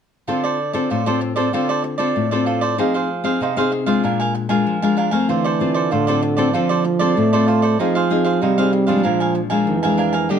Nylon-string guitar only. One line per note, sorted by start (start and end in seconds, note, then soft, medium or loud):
0.28 0.87 D3 medium
0.28 0.57 C4 soft
0.28 0.57 F4 soft
0.28 0.58 A4 soft
0.74 1.01 C4 soft
0.74 1.01 F4 medium
0.74 1.01 A4 medium
0.91 1.50 A2 medium
1.06 1.33 C4 soft
1.06 1.33 F4 medium
1.06 1.33 A4 medium
1.36 1.48 C4 medium
1.36 1.48 F4 medium
1.36 1.48 A4 medium
1.53 2.13 D3 medium
1.53 1.95 C4 soft
1.53 1.95 F4 soft
1.53 1.96 A4 medium
1.99 2.26 C4 soft
1.99 2.26 F4 soft
1.99 2.26 A4 medium
2.16 2.75 A2 medium
2.32 2.74 C4 soft
2.32 2.74 F4 soft
2.32 2.74 A4 medium
2.78 3.38 F3 medium
2.78 3.08 C4 soft
2.78 3.08 D#4 soft
2.78 3.08 G#4 soft
3.24 3.51 C4 medium
3.24 3.51 D#4 soft
3.24 3.51 G#4 medium
3.41 4.01 C3 medium
3.57 3.83 C4 medium
3.57 3.83 D#4 medium
3.57 3.83 G#4 medium
3.86 4.45 G#3 medium
3.86 4.45 D4 medium
3.86 4.45 F4 medium
4.04 4.63 A#2 medium
4.49 4.76 G#3 medium
4.49 4.77 D4 medium
4.49 4.77 F4 medium
4.67 5.26 F3 medium
4.82 5.09 G#3 soft
4.82 5.09 D4 medium
4.82 5.09 F4 medium
5.12 5.71 A3 medium
5.12 5.59 C4 medium
5.29 5.89 D3 medium
5.60 5.90 C4 soft
5.60 5.90 F4 medium
5.60 5.90 A4 medium
5.92 6.52 A2 medium
6.08 6.34 C4 medium
6.08 6.34 F4 medium
6.08 6.35 A4 medium
6.38 6.49 C4 medium
6.38 6.49 F4 medium
6.38 6.49 A4 medium
6.54 7.14 D3 medium
6.54 6.84 C4 medium
6.54 6.84 F4 soft
6.54 6.84 A4 medium
7.00 7.27 C4 medium
7.00 7.27 F4 medium
7.00 7.28 A4 medium
7.17 7.77 A2 medium
7.33 7.75 C4 medium
7.33 7.75 F4 medium
7.33 7.75 A4 medium
7.80 8.39 F3 medium
7.80 8.06 C4 medium
7.80 8.06 D#4 soft
7.80 8.07 G#4 medium
8.10 8.53 C4 medium
8.10 8.53 D#4 medium
8.10 8.53 G#4 medium
8.42 9.02 C3 medium
8.58 8.84 C4 medium
8.58 8.85 D#4 medium
8.58 8.85 G#4 medium
8.88 9.46 F3 medium
8.88 9.47 G#3 medium
8.88 9.47 D4 medium
9.05 9.64 A#2 medium
9.50 9.77 F3 medium
9.50 9.78 G#3 medium
9.50 9.78 D4 medium
9.67 10.27 F2 medium
9.84 10.26 G#3 medium
9.84 10.26 D4 medium
10.30 10.39 G3 soft
10.30 10.39 A#3 soft
10.30 10.39 D4 medium